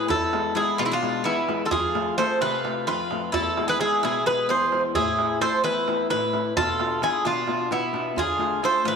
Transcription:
0.08 nylon-string guitar E2, bouzouki E4 A4, darbuka dum
0.33 nylon-string guitar G#3 B3 E4, darbuka tek
0.45 darbuka tek
0.55 nylon-string guitar G#3 B3 E4, bouzouki E4 G#4, darbuka tek
0.78 nylon-string guitar B2, bouzouki B3 F4, darbuka tek
0.85 bouzouki C4 E4
0.92 bouzouki D4 F4
1.02 nylon-string guitar G#3 B3 E4, darbuka tek
1.14 darbuka tek
1.24 nylon-string guitar E2, bouzouki B3 E4, darbuka tek
1.37 darbuka tek
1.48 nylon-string guitar G#3 B3 E4, darbuka tek
1.65 bouzouki F4 A4
1.71 nylon-string guitar F2, bouzouki F4 G#4, darbuka dum
1.94 nylon-string guitar A3 C4 F4, darbuka tek
2.07 darbuka tek
2.18 nylon-string guitar A3 C4 F4, bouzouki A4 C5, darbuka tek
2.41 nylon-string guitar C3, bouzouki F4 B4, darbuka tek
2.64 nylon-string guitar A3 C4 F4, darbuka tek
2.76 darbuka tek
2.87 nylon-string guitar F2, bouzouki F4 B4, darbuka tek
2.99 darbuka tek
3.11 nylon-string guitar A3 C4 F4, darbuka tek
3.32 nylon-string guitar E2, bouzouki E4 A4, darbuka dum
3.57 nylon-string guitar G#3 B3 E4, darbuka tek
3.68 bouzouki G#4 B4
3.79 nylon-string guitar G#3 B3 E4, bouzouki E4 G#4, darbuka tek
4.03 nylon-string guitar B2, bouzouki E4 G#4, darbuka tek
4.26 nylon-string guitar G#3 B3 E4, bouzouki G#4 B4, darbuka tek
4.38 darbuka tek
4.49 nylon-string guitar E2, bouzouki G#4 C5, darbuka tek
4.61 darbuka tek
4.72 nylon-string guitar G#3 B3 E4, darbuka tek
4.95 nylon-string guitar A2, bouzouki E4 G#4, darbuka dum
5.19 nylon-string guitar A3 C4 E4, darbuka tek
5.30 darbuka tek
5.40 nylon-string guitar A3 C4 E4, bouzouki A4 C5, darbuka tek
5.64 nylon-string guitar E2, bouzouki E4 B4, darbuka tek
5.87 nylon-string guitar A3 C4 E4, darbuka tek
5.99 darbuka tek
6.10 nylon-string guitar A2, bouzouki E4 B4, darbuka tek
6.21 darbuka tek
6.33 nylon-string guitar A3 C4 E4, darbuka tek
6.57 bouzouki F4 A4, darbuka dum
6.79 nylon-string guitar B3 D4 F4, darbuka tek
6.91 darbuka tek
7.02 nylon-string guitar B3 D4 F4, bouzouki E4 G#4, darbuka tek
7.25 nylon-string guitar B2, bouzouki D4 F4, darbuka tek
7.47 nylon-string guitar B3 D4 F4, darbuka tek
7.59 darbuka tek
7.71 nylon-string guitar B2, bouzouki B3 E4, darbuka tek
7.83 darbuka tek
7.93 nylon-string guitar B3 D4 F4, darbuka tek
8.16 nylon-string guitar D3, bouzouki F4 G#4, darbuka dum
8.39 nylon-string guitar A3 D4 F4, darbuka tek
8.52 darbuka tek
8.62 nylon-string guitar A3 D4 F4, bouzouki A4 C5, darbuka tek
8.85 nylon-string guitar A2, bouzouki F4 B4, darbuka tek

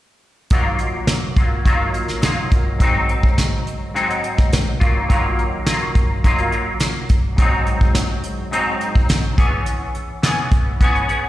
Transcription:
0.50 clean electric guitar D#3 F#3 A#3 F4, kick, closed hi-hat
0.79 closed hi-hat
1.07 snare, closed hi-hat
1.36 clean electric guitar F#3 A#3 F4, kick, closed hi-hat
1.65 clean electric guitar D#3 F#3 A#3 F4, kick, closed hi-hat
1.94 closed hi-hat
2.08 snare, closed hi-hat
2.22 clean electric guitar D#3 F#3 A#3 F4, snare, closed hi-hat
2.52 kick, closed hi-hat
2.78 clean electric guitar G#2 F#3 C4, kick, closed hi-hat
2.83 clean electric guitar D#4
3.09 closed hi-hat
3.23 kick
3.38 snare, closed hi-hat
3.67 closed hi-hat
3.94 clean electric guitar G#2 F#3 C4 D#4, closed hi-hat
4.10 closed hi-hat
4.24 closed hi-hat
4.38 kick, snare
4.52 snare, closed hi-hat
4.80 clean electric guitar D#3 F#3 A#3 F4, kick, closed hi-hat
5.09 clean electric guitar D#3 F#3 A#3 F4, kick, closed hi-hat
5.39 closed hi-hat
5.66 clean electric guitar D#3 F#3 A#3 F4, snare, closed hi-hat
5.95 kick, closed hi-hat
6.24 clean electric guitar D#3 F#3 A#3 F4, kick, closed hi-hat
6.38 closed hi-hat
6.52 clean electric guitar F#3 A#3 F4, closed hi-hat
6.80 snare, closed hi-hat
7.09 kick, closed hi-hat
7.36 clean electric guitar G#2 F#3 C4, kick, closed hi-hat
7.41 clean electric guitar D#4
7.67 closed hi-hat
7.81 kick
7.95 snare, closed hi-hat
8.24 closed hi-hat
8.51 clean electric guitar G#2 F#3 C4 D#4, closed hi-hat
8.81 closed hi-hat
8.95 kick, closed hi-hat
9.09 snare, closed hi-hat
9.38 clean electric guitar E3 B3 C#4 G#4, kick, closed hi-hat
9.66 closed hi-hat
9.95 closed hi-hat
10.23 clean electric guitar E3 B3 C#4 G#4, snare, closed hi-hat
10.52 kick, closed hi-hat
10.81 clean electric guitar E3 B3 C#4 G#4, kick, closed hi-hat
10.96 closed hi-hat
11.08 clean electric guitar B3 C#4 G#4, closed hi-hat

